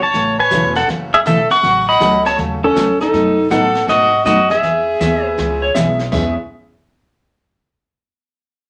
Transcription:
0.01 C#5 A5
0.14 A1 C#3 E3 A3 C#4 F#4, brush sweep, kick, snare
0.38 B4 C#5 G#5
0.51 E1 C#3 E3 F#3 A3 C#4 E4 F#4, kick, snare, hi-hat pedal
0.75 A4 F#5, snare
0.88 F#1 C#3 E3 A3 C#4 F#4, brush sweep, kick, snare
1.13 G#4 E5
1.26 B1 C#3 E3 A3 C#4 F#4 A4 E5, kick, snare, hi-hat pedal
1.49 F#5 C#6, muted upright bass stroke, snare
1.63 A1 C#3 F#3 A3 C#4 F#4, brush sweep, kick, snare
1.87 D#5 F#5 B5
2.00 C#2 C#3 F#3 A3 C#4 F#4 A4, kick, snare, hi-hat pedal
2.25 C#5 A5, snare
2.38 D#2 C#3 F#3 A3 C#4 F#4, brush sweep, kick, snare
2.63 C#4 A4
2.75 E2 C#3 F#3 A3 C#4 F#4, kick, snare, hi-hat pedal
3.00 D#4 A4, snare
3.13 F#2 B2 F#3 A3 D#4 F#4, brush sweep, kick, snare
3.50 A2 B2 F#3 A3 B3 D#4 F#4 A4 F#5, kick, snare, hi-hat pedal
3.75 snare
3.87 G#2 B2 F#3 A3 D#4 F#4 D#5, brush sweep, kick, snare
4.25 F#2 B2 F#3 A3 D#4 F#4 D#5, kick, snare, hi-hat pedal
4.50 G#4 E5, snare
4.62 E2 E3 B3 C#4 G#4, brush sweep, kick, snare
5.00 D#2 E3 B3 C#4 G#4 E5, kick, snare, hi-hat pedal
5.25 B4
5.37 C#2 E3 B3 C#4 G#4, brush sweep, kick, snare
5.62 C#5
5.74 B1 E3 G#3 B3 C#4 E4 G#4 E5, kick, snare, hi-hat pedal
5.99 snare
6.12 E2 E3 G#3 B3 C#4 E4 G#4 E5, kick, snare, crash

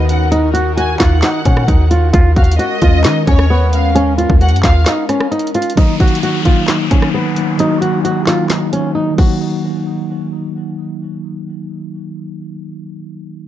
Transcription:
Already playing: D#2 D#3 B3 D#4 F#4 A#4
0.09 F#5, closed hi-hat
0.32 D#4, closed hi-hat
0.54 F#4, closed hi-hat
0.77 F#4 G#5, closed hi-hat
1.00 D#2 F4 F#5, kick, snare, clap
1.22 D#4, snare, clap, closed hi-hat
1.45 A#2 C#4, kick, closed hi-hat
1.57 cross-stick
1.68 D#2 D#4, kick, closed hi-hat
1.91 F4, closed hi-hat
2.13 D#2 G#3 C#4 F4 A#4, kick, closed hi-hat
2.36 D#2 F#4 F5, kick, closed hi-hat
2.44 closed hi-hat
2.52 closed hi-hat
2.59 F#4 D#5, closed hi-hat
2.82 D#2 F4, kick, closed hi-hat
3.04 D#3 D#4, snare, clap, closed hi-hat
3.27 D#2 C#4 C#5, kick, closed hi-hat
3.39 cross-stick
3.50 B3
3.73 F5, closed hi-hat
3.95 C#4, closed hi-hat
4.18 F4, closed hi-hat
4.30 D#2, kick
4.41 F#4 F#5, closed hi-hat
4.49 F#2, closed hi-hat
4.56 closed hi-hat
4.63 D#2 F4 F5, kick, snare, clap
4.86 D#4, snare, clap, closed hi-hat
5.09 C#4, cross-stick, closed hi-hat
5.20 cross-stick
5.31 D#4, closed hi-hat
5.39 closed hi-hat
5.47 closed hi-hat
5.55 F4, closed hi-hat
5.62 closed hi-hat
5.70 closed hi-hat
5.76 D#3 F#3 A#3 D#4, kick, closed hi-hat, downlifter
6.00 F#4, kick, closed hi-hat
6.08 closed hi-hat
6.15 closed hi-hat
6.23 F#4, closed hi-hat
6.44 D#3 F#3 A#3 D#4 F4, kick, closed hi-hat
6.68 D#4, snare, clap, closed hi-hat
6.89 D#3 F#3 A#3 C#4 D#4, kick, closed hi-hat
7.02 cross-stick
7.14 B3
7.35 D#3 F#3 A#3 D#4, closed hi-hat
7.57 D#3 F#3 A#3 D#4 F#4, closed hi-hat
7.81 F#4, closed hi-hat
7.91 D#3 F#3 A#3 D#4
8.04 F#4, closed hi-hat
8.26 D#3 F#3 A#3 D#4 F4, snare, clap
8.50 D#4, snare, clap, closed hi-hat
8.73 C#4, closed hi-hat
8.95 D#4
9.11 D#3
9.16 F#3 F#4, kick, crash
9.21 A#3
9.26 D#4

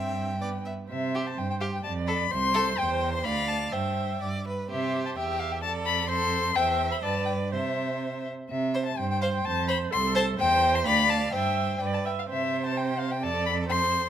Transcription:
Already playing: G2 C4 E5 G5
0.41 B3 D5
0.65 E5
0.89 C3 C5 E5
1.15 G4
1.27 A5
1.37 G2 G5
1.50 G5
1.60 G4 F5
1.73 G5
1.84 F2 D5 A5
2.07 A4 B5
2.31 C2 C5 C6
2.54 A4
2.78 E2 C5 G5
3.13 C6
3.24 D2 D5 F5 B5
3.48 A5
3.72 G2 C5 E5 G5
4.21 G2 D5
4.47 B4
4.69 C3 G4 C5 E5
5.06 A5
5.17 E2 G4 E5 G5
5.29 G5
5.39 F5
5.52 G5
5.62 F2 A4 D5 A5
5.85 B5
6.09 A4 C5 C6
6.56 E2 C5 E5 G5
6.92 B5
7.03 G2 B4 D5 A5
7.25 G5
7.51 C3 C5 E5
8.50 C3 E5
8.74 C5
8.85 A5
8.98 G2 C5 G5
9.11 G5
9.22 C5 F5
9.34 G5
9.45 F2 A5
9.68 C5 B5
9.91 C2 A4 C6
10.15 C5 A5
10.39 E2 C5 G5
10.75 C6
10.86 D2 D5 F5 B5
11.10 A5
11.33 G2 C5 E5 G5
11.81 G2 B4 D5
11.94 A5
12.05 E5 G5
12.19 F5
12.29 C3 C5 E5
12.66 A5
12.77 G5
12.89 G5
12.99 F5
13.11 G5
13.23 F2 A4 D5 A5
13.46 B5
13.69 C5 C6

